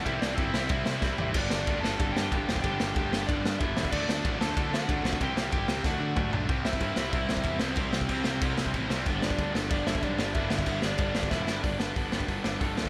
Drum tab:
CC |----------------|x---------------|----------------|x---------------|
RD |x---x---x-------|----x---x---x---|x---x---x---x---|----x---x---x---|
HH |----------------|----------------|----------------|----------------|
SD |--o---o---o-o---|--o---o---o---o-|--o---o---o---o-|--o---o---o---o-|
T2 |----------------|----------------|----------------|----------------|
FT |--------------o-|----------------|----------------|----------------|
BD |o---o---o---o---|o---o---o---o--o|o---o---o---o--o|o---o---o---o--o|

CC |----------------|x---x---x---x---|x---x---x---x---|x---x---x---x---|
RD |x---x-----------|----------------|----------------|----------------|
HH |----------------|----------------|----------------|----------------|
SD |--o---o-o-------|--o---o---o---o-|--o---o---o---o-|--o---o---o---o-|
T2 |------------o---|----------------|----------------|----------------|
FT |--------------o-|----------------|----------------|----------------|
BD |o---o---o---o---|o--oo---o--oo---|o--oo---o--oo---|o--oo---o--oo---|

CC |x---x---x-------|----------------|
RD |----------------|----------------|
HH |----------------|o---o---o---o---|
SD |--o---o---o-o-o-|--o---o---o---o-|
T2 |----------------|----------------|
FT |----------------|----------------|
BD |o--oo---o--oo---|o---o--oo---o--o|